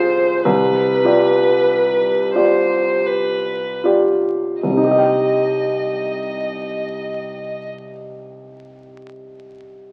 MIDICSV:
0, 0, Header, 1, 3, 480
1, 0, Start_track
1, 0, Key_signature, -3, "minor"
1, 0, Tempo, 1145038
1, 189, Time_signature, 3, 2, 24, 8
1, 189, Tempo, 1237113
1, 669, Tempo, 1360544
1, 1149, Tempo, 1587302
1, 1629, Tempo, 1511335
1, 2589, Tempo, 1546392
1, 3292, End_track
2, 0, Start_track
2, 0, Title_t, "Violin"
2, 0, Program_c, 0, 40
2, 0, Note_on_c, 0, 72, 55
2, 190, Note_on_c, 0, 71, 52
2, 195, Note_off_c, 0, 72, 0
2, 900, Note_off_c, 0, 71, 0
2, 902, Note_on_c, 0, 72, 44
2, 1153, Note_on_c, 0, 71, 38
2, 1158, Note_off_c, 0, 72, 0
2, 1389, Note_off_c, 0, 71, 0
2, 1625, Note_on_c, 0, 75, 33
2, 2599, Note_off_c, 0, 75, 0
2, 3292, End_track
3, 0, Start_track
3, 0, Title_t, "Grand piano"
3, 0, Program_c, 1, 0
3, 0, Control_c, 1, 64, 127
3, 0, Note_on_c, 1, 65, 27
3, 0, Note_on_c, 1, 68, 27
3, 0, Note_on_c, 1, 72, 30
3, 172, Note_off_c, 1, 65, 0
3, 172, Note_off_c, 1, 68, 0
3, 175, Note_off_c, 1, 72, 0
3, 190, Note_on_c, 1, 36, 38
3, 197, Control_c, 1, 64, 0
3, 290, Control_c, 1, 64, 127
3, 417, Note_off_c, 1, 36, 0
3, 420, Note_on_c, 1, 65, 27
3, 423, Note_on_c, 1, 67, 26
3, 425, Note_on_c, 1, 74, 27
3, 886, Note_off_c, 1, 65, 0
3, 887, Note_off_c, 1, 67, 0
3, 888, Note_off_c, 1, 74, 0
3, 904, Note_on_c, 1, 65, 23
3, 905, Note_on_c, 1, 67, 21
3, 906, Note_on_c, 1, 74, 24
3, 1376, Note_off_c, 1, 65, 0
3, 1376, Note_off_c, 1, 67, 0
3, 1377, Note_off_c, 1, 74, 0
3, 1388, Note_on_c, 1, 65, 22
3, 1391, Note_on_c, 1, 67, 22
3, 1392, Note_on_c, 1, 74, 23
3, 1617, Note_off_c, 1, 65, 0
3, 1619, Note_off_c, 1, 67, 0
3, 1619, Note_off_c, 1, 74, 0
3, 1628, Note_on_c, 1, 36, 24
3, 1638, Control_c, 1, 64, 0
3, 1651, Note_on_c, 1, 48, 24
3, 1672, Note_on_c, 1, 63, 24
3, 1695, Note_on_c, 1, 67, 24
3, 1717, Note_on_c, 1, 75, 23
3, 1735, Control_c, 1, 64, 127
3, 1740, Note_on_c, 1, 79, 22
3, 2602, Note_off_c, 1, 36, 0
3, 2625, Note_off_c, 1, 48, 0
3, 2645, Note_off_c, 1, 63, 0
3, 2667, Note_off_c, 1, 67, 0
3, 2689, Note_off_c, 1, 75, 0
3, 2711, Note_off_c, 1, 79, 0
3, 3292, End_track
0, 0, End_of_file